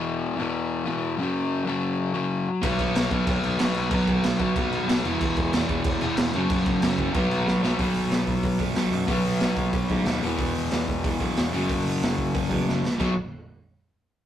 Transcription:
<<
  \new Staff \with { instrumentName = "Overdriven electric guitar" } { \clef bass \time 4/4 \key e \lydian \tempo 4 = 186 r1 | r1 | <b, fis b>2 <b, fis b>2 | <b, fis b>2 <b, fis b>4. <e, b, e>8~ |
<e, b, e>4. <e, b, e>2 <fis, cis fis>8~ | <fis, cis fis>4. <fis, cis fis>8 <b, fis b>2 | <b, fis b>2~ <b, fis b>8 <b, fis b>8 <b, fis b>4 | <b, fis b>2~ <b, fis b>8 <b, fis b>8 <b, fis b>8 <e, b, e>8~ |
<e, b, e>2 <e, b, e>8 <e, b, e>4 <fis, cis fis>8~ | <fis, cis fis>2 <fis, cis fis>8 <fis, cis fis>4 r8 | <b, fis b>8 r2. r8 | }
  \new Staff \with { instrumentName = "Overdriven electric guitar" } { \clef bass \time 4/4 \key e \lydian <e, b, e>4 <e, b, e>4. <e, b, e>4 <fis, cis fis>8~ | <fis, cis fis>4 <fis, cis fis>4. <fis, cis fis>4 r8 | <b, fis b>4. <b, fis b>4. <b, fis b>4 | <b, fis b>4. <b, fis b>4. <b, fis b>8 <e, b, e>8~ |
<e, b, e>4 <e, b, e>4. <e, b, e>4 <fis, cis fis>8~ | <fis, cis fis>4 <fis, cis fis>4 <b, fis b>4. <b, fis b>8 | <b, fis b>1 | <b, fis b>2.~ <b, fis b>8 <e, b, e>8~ |
<e, b, e>2.~ <e, b, e>8 <fis, cis fis>8~ | <fis, cis fis>2.~ <fis, cis fis>8 r8 | <b, fis b>8 r2. r8 | }
  \new Staff \with { instrumentName = "Picked electric bass" } { \clef bass \time 4/4 \key e \lydian r1 | r1 | b,,8 b,,8 b,,8 b,,8 b,,8 b,,8 b,,8 b,,8 | b,,8 b,,8 b,,8 b,,8 b,,8 b,,8 b,,8 e,,8 |
e,,8 e,,8 e,,8 e,,8 e,,8 e,,8 e,,8 fis,,8 | fis,,8 fis,,8 fis,,8 fis,,8 b,,8 b,,8 b,,8 b,,8 | b,,4 b,,8 b,,8 b,,8 fis,,8 b,,8 fis,8 | b,,8 b,,8 b,,8 b,,8 b,,8 gis,8 dis,8 e,,8 |
e,,4 e,,8 e,,8 e,,8 b,,8 e,,8 fis,,8 | fis,,8 fis,,8 fis,,8 fis,,8 fis,,8 e,8 fis,,8 ais,,8 | b,,8 r2. r8 | }
  \new DrumStaff \with { instrumentName = "Drums" } \drummode { \time 4/4 r4 r4 r4 r4 | r4 r4 r4 r4 | <cymc bd>8 <cymc bd>8 <cymc sn>8 <cymc bd>8 <cymc bd>8 cymc8 <cymc sn>8 cymc8 | <cymc bd>8 <cymc bd>8 <cymc sn>8 <cymc bd>8 <cymc bd>8 cymc8 <cymc sn>8 cymc8 |
<cymc bd>8 <cymc bd>8 <cymc sn>8 <cymc bd>8 <cymc bd>8 cymc8 <cymc sn>8 cymc8 | <cymc bd>8 <cymc bd>8 <cymc sn>8 <cymc bd>8 <cymc bd>8 cymc8 sn8 sn8 | <hho bd>8 hho8 <hho sn>8 <hho bd>8 <hho bd>8 <hho bd>8 <hho sn>8 hho8 | <hho bd>8 hho8 <hho sn>8 <hho bd>8 <hho bd>8 <hho bd>8 <hho sn>8 hho8 |
<hho bd>8 hho8 <hho sn>8 <hho bd>8 <hho bd>8 <hho bd>8 <hho sn>8 hho8 | <hho bd>8 hho8 <hho sn>8 <hho bd>8 <hho bd>8 <hho bd>8 sn8 sn8 | <cymc bd>4 r4 r4 r4 | }
>>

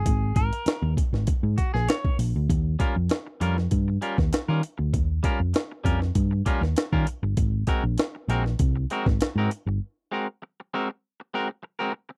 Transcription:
<<
  \new Staff \with { instrumentName = "Clean electric guitar" } { \time 4/4 \key ees \major \tempo 4 = 98 aes'8 bes'4 r4 ges'16 aes'16 des''8 r8 | r8 <g des' f' bes'>16 r8. <g des' f' bes'>16 r8. <g des' f' bes'>16 r8 <g des' f' bes'>16 r8 | r8 <g des' f' bes'>16 r8. <g des' f' bes'>16 r8. <g des' f' bes'>16 r8 <g des' f' bes'>16 r8 | r8 <aes c' ges' bes'>16 r8. <aes c' ges' bes'>16 r8. <aes c' ges' bes'>16 r8 <aes c' ges' bes'>16 r8 |
r8 <aes c' ges' bes'>16 r8. <aes c' ges' bes'>16 r8. <aes c' ges' bes'>16 r8 <aes c' ges' bes'>16 r8 | }
  \new Staff \with { instrumentName = "Picked electric bass" } { \clef bass \time 4/4 \key ees \major aes,,8 aes,,16 r8 ees,16 r16 aes,,16 r16 aes,16 r16 bes,,16 r8 bes,,16 d,16 | ees,8 r16 f,16 r8 f,8 g,8 r16 ees,16 r16 ees16 r16 d,16 | ees,8 r16 f,16 r8 f,8 g,8 r16 ees,16 r16 ees16 r16 g,,16 | aes,,8 r16 bes,,16 r8 bes,,8 c,8 r16 aes,,16 r16 aes,16 r16 g,,16 |
r1 | }
  \new DrumStaff \with { instrumentName = "Drums" } \drummode { \time 4/4 <hh bd>8 <hh bd>16 hh16 <hh sn>8 <hh bd>16 sn16 <hh bd>8 <hh bd>16 sn16 <hh sn>16 bd16 hho8 | <hh bd>8 <hh bd>8 <hh sn>8 hh16 sn16 <hh bd>8 hh16 <bd sn>16 <hh sn>8 hh8 | <hh bd>8 <hh bd>8 <hh sn>8 <hh bd>16 sn16 <hh bd>8 <hh bd>16 sn16 <hh sn>16 bd16 hh8 | <hh bd>8 <hh bd>8 <hh sn>8 hh16 sn16 <hh bd>8 hh16 <bd sn>16 <hh sn>8 hh8 |
r4 r4 r4 r4 | }
>>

